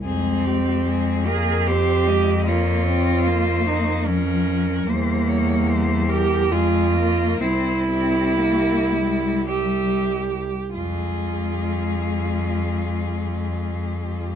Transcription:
cello
0.04 F2 G#3 C4 G#4
0.45 G4
0.86 G#3 G#4
1.26 A#3 G#4 A#4
1.67 C4 G4 C5
2.07 G#3 D#5
2.46 A#3 F4 C#5
2.87 C4
3.27 A#3 C5
3.67 D#4
4.07 F3 C#4 A#4
4.87 E2 G3 A#3 C5
5.29 C#5
5.69 C5
6.09 G4 A#4
6.51 F2 G#3 F4 G#4
6.95 A#3 A#4
7.40 C2 C4 E4 C5
7.88 C4 G4
8.38 A#3
8.92 G#3
9.49 G3 G4 E5
10.74 F2 G#3 F4 G#4

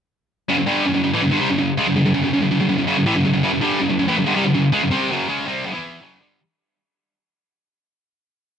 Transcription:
distorted electric guitar
0.49 F#2 C#3
0.58 F#2 C#3
0.66 G2 D3 G3
0.85 F#2 C#3
0.94 F#2 C#3
1.04 F#2 C#3
1.14 A2 E3
1.22 F#2 C#3
1.31 G2 D3
1.40 C3 G3
1.50 F#2 C#3
1.59 F#2 C#3
1.78 C#3 G#3
1.87 F#2 C#3
1.96 F#2 C#3
2.06 F#2 C#3
2.14 F#2 C#3
2.24 F#2 C#3
2.33 F#2 C#3
2.42 F#2 C#3
2.51 F#2 C#3
2.60 F#2 C#3
2.69 F#2 C#3
2.78 F#2 C#3
2.87 F#2 C#3
2.97 F#2 C#3
3.06 A2 E3
3.16 F#2 C#3
3.25 F#2 C#3
3.34 F#2 C#3
3.43 F#2 C#3
3.52 F#2 C#3
3.61 G2 D3 G3
3.80 F#2 C#3
3.90 F#2 C#3
3.99 F#2 C#3
4.08 A2 E3
4.17 F#2 C#3
4.27 G2 D3
4.36 C3 G3
4.45 F#2 C#3
4.55 F#2 C#3
4.72 C#3 G#3
4.83 F#2 C#3
4.91 C3 G3 C4
5.10 F#2 C#3 F#3
5.28 C#3 G#3 C#4
5.47 C3 G3 C4
5.65 F#2 C#3
5.73 E3 B3 E4
6.01 F#2 C#3 F#3
6.20 G2 D3 G3

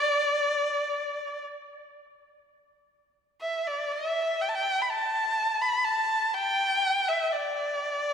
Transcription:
erhu
Already playing: D5
3.41 E5
3.67 D5
3.92 E5
4.41 G5
4.49 A5
4.55 G5
4.82 B5
4.90 A5
5.61 B5
5.84 A5
6.34 G5
7.08 E5
7.32 D5

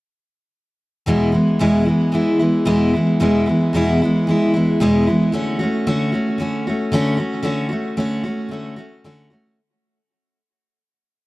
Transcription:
steel-string acoustic guitar
1.06 E2 B2 E3 G#3 B3 E4
1.32 E3 G#3 B3 E4
1.59 E2 B2 E3 G#3 B3 E4
1.85 E3 G#3 B3 E4
2.12 E3 G#3 B3 E4
2.39 E3 G#3 B3 E4
2.65 E2 B2 E3 G#3 B3 E4
2.93 E3 G#3 B3 E4
3.20 E2 B2 E3 G#3 B3 E4
3.46 E3 G#3 B3 E4
3.73 E2 B2 E3 G#3 B3 E4
4.02 E3 G#3 B3 E4
4.27 E3 G#3 B3 E4
4.54 E3 G#3 B3 E4
4.80 E2 B2 E3 G#3 B3 E4
5.07 E3 G#3 B3 E4
5.32 D3 A3 C#4 F#4
5.59 C#4 F#4
5.63 A3
5.87 D3 A3 C#4 F#4
6.12 A3 C#4 F#4
6.38 D3 A3 C#4 F#4
6.67 A3 C#4 F#4
6.92 D3 A3 C#4 F#4
7.17 A3 C#4 F#4
7.43 D3 A3 C#4 F#4
7.69 A3 C#4 F#4
7.97 D3 A3 C#4 F#4
8.23 A3 C#4 F#4
8.49 D3 A3 C#4
8.53 F#4
8.76 A3 C#4 F#4
9.04 D3 A3 C#4 F#4
9.30 A3 C#4 F#4

